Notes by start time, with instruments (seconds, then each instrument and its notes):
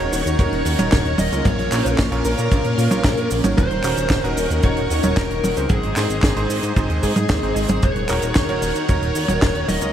Already playing: string machine C#4 D#4 A#4 F#5, lead electric guitar C#5
0.00 electric grand piano D#3 D#4 F#4 A#4 C#5
0.13 analog synth bass D#1, lead electric guitar C#5, open hi-hat, cabasa
0.26 analog synth bass D#2, closed hi-hat, cabasa
0.39 analog synth bass D#1, electric grand piano D#3 D#4 F#4 A#4 C#5, kick, closed hi-hat, cabasa
0.52 analog synth bass D#1, closed hi-hat
0.65 analog synth bass D#2, open hi-hat, cabasa
0.79 analog synth bass D#1, electric grand piano D#3 D#4 F#4 A#4 C#5, closed hi-hat, high tom, cabasa
0.92 analog synth bass D#1, kick, snare, clap, closed hi-hat, cabasa
1.05 analog synth bass D#1, closed hi-hat
1.18 analog synth bass D#1, lead electric guitar D#5, open hi-hat, high tom, cabasa
1.32 analog synth bass C#2, electric grand piano A#2 C#4 F4 A#4 C#5, closed hi-hat, cabasa
1.45 analog synth bass A#1, string machine A#3 F5, lead electric guitar C#5, kick, closed hi-hat, high tom, cabasa
1.59 analog synth bass A#1, closed hi-hat
1.71 analog synth bass A#1, electric grand piano A#2 C#4 F4 A#4 C#5, clap, open hi-hat, cabasa
1.85 analog synth bass A#1, closed hi-hat, cabasa
1.98 analog synth bass A#1, kick, snare, clap, closed hi-hat, cabasa
2.12 analog synth bass A#1, electric grand piano A#2 C#4 F4 A#4 C#5, closed hi-hat
2.25 analog synth bass A#1, lead electric guitar A#4, open hi-hat, cabasa
2.38 analog synth bass A#2, closed hi-hat, cabasa
2.51 analog synth bass A#1, electric grand piano A#2 C#4 F4 A#4 C#5, kick, closed hi-hat, cabasa
2.64 analog synth bass A#1, closed hi-hat
2.78 analog synth bass A#2, open hi-hat, cabasa
2.91 analog synth bass A#1, electric grand piano A#2 C#4 F4 A#4 C#5, closed hi-hat, high tom, cabasa
3.04 analog synth bass A#1, kick, snare, clap, closed hi-hat, cabasa
3.17 analog synth bass A#1, closed hi-hat
3.31 analog synth bass A#1, open hi-hat, cabasa
3.44 analog synth bass G#1, electric grand piano D#3 D#4 F#4 A#4 C#5, closed hi-hat, high tom, cabasa
3.57 analog synth bass D#1, string machine D#4 A#4 F#5, lead electric guitar C5, kick, closed hi-hat, high tom, cabasa
3.70 analog synth bass D#1, closed hi-hat
3.84 analog synth bass D#1, electric grand piano D#3 C#4 D#4 F#4 A#4, clap, open hi-hat, cabasa
3.97 analog synth bass D#1, closed hi-hat, cabasa
4.10 analog synth bass D#1, kick, snare, clap, closed hi-hat, cabasa
4.24 analog synth bass D#1, electric grand piano D#3 C#4 D#4 F#4 A#4, closed hi-hat
4.28 lead electric guitar A#4
4.37 analog synth bass D#1, open hi-hat, cabasa
4.50 analog synth bass D#2, closed hi-hat, cabasa
4.63 analog synth bass D#1, electric grand piano D#3 D#4 F#4 A#4 C#5, lead electric guitar C#5, kick, closed hi-hat, cabasa
4.77 analog synth bass D#1, closed hi-hat
4.90 analog synth bass D#2, open hi-hat, cabasa
5.03 analog synth bass D#1, electric grand piano D#3 D#4 F#4 A#4 C#5, closed hi-hat, high tom, cabasa
5.16 analog synth bass D#1, lead electric guitar A#4, kick, snare, clap, closed hi-hat, cabasa
5.30 analog synth bass D#1, closed hi-hat
5.43 analog synth bass D#1, open hi-hat, high tom, cabasa
5.57 analog synth bass C#2, electric grand piano G#2 C4 D#4 G#4 C5, closed hi-hat, cabasa
5.69 analog synth bass G#1, string machine G#3 G#4 C5 D#5, lead electric guitar G#4, kick, closed hi-hat, high tom, cabasa
5.83 analog synth bass G#1, closed hi-hat
5.96 analog synth bass G#1, electric grand piano G#2 C4 D#4 G#4 C5, lead electric guitar G#4, snare, clap, open hi-hat, cabasa
6.10 analog synth bass G#1, closed hi-hat, cabasa
6.23 analog synth bass G#1, kick, snare, clap, closed hi-hat, cabasa
6.36 analog synth bass G#1, electric grand piano G#2 C4 D#4 G#4 C5, closed hi-hat
6.50 analog synth bass G#1, open hi-hat, cabasa
6.63 analog synth bass G#2, closed hi-hat, cabasa
6.76 analog synth bass G#1, electric grand piano G#2 C4 D#4 G#4 C5, kick, closed hi-hat, swell, cabasa
6.90 analog synth bass D#2, closed hi-hat
7.03 analog synth bass G#2, lead electric guitar G#4, kick, open hi-hat, cabasa
7.16 analog synth bass G#2, closed hi-hat, high tom, cabasa
7.29 analog synth bass D#2, electric grand piano G#2 C4 D#4 G#4 C5, kick, snare, clap, closed hi-hat, cabasa
7.43 analog synth bass G#1, electric grand piano G#2 C4 D#4 G#4 C5, closed hi-hat
7.56 analog synth bass G#1, lead electric guitar G#4, open hi-hat, cabasa
7.69 analog synth bass G#1, closed hi-hat, high tom, cabasa
7.82 analog synth bass D#1, string machine D#4 A#4 C#5 F#5, lead electric guitar C#5, kick, closed hi-hat, high tom, cabasa
7.96 analog synth bass D#1, closed hi-hat
8.09 analog synth bass D#1, electric grand piano D#3 D#4 F#4 A#4 C#5, clap, open hi-hat, cabasa
8.22 analog synth bass D#1, closed hi-hat, cabasa
8.35 analog synth bass D#1, kick, snare, clap, closed hi-hat, cabasa
8.49 analog synth bass D#1, electric grand piano D#3 D#4 F#4 A#4 C#5, closed hi-hat
8.62 analog synth bass D#1, lead electric guitar C#5, open hi-hat, cabasa
8.75 analog synth bass D#2, closed hi-hat, cabasa
8.88 analog synth bass D#1, electric grand piano D#3 D#4 F#4 A#4 C#5, kick, closed hi-hat, cabasa
9.02 analog synth bass D#1, closed hi-hat
9.15 analog synth bass D#2, open hi-hat, cabasa
9.28 analog synth bass D#1, electric grand piano D#3 D#4 F#4 A#4 C#5, closed hi-hat, high tom, cabasa
9.42 analog synth bass D#1, kick, snare, clap, closed hi-hat, cabasa
9.55 analog synth bass D#1, closed hi-hat
9.68 analog synth bass D#1, lead electric guitar D#5, open hi-hat, high tom, cabasa
9.81 analog synth bass C#2, electric grand piano A#2 C#4 F4 A#4 C#5, closed hi-hat, cabasa